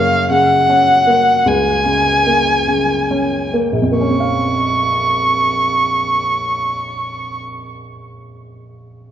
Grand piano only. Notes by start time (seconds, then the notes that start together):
Already playing: F#2 C#3 A#3
0.30 C#3
0.69 C#4
1.07 A#3
1.46 C#2
1.85 C#3
2.27 A#3
2.67 C#3
3.11 C#4
3.53 A#3
3.72 A#1
3.82 F2
3.92 A#3
4.01 C#4
4.11 C4
4.20 F5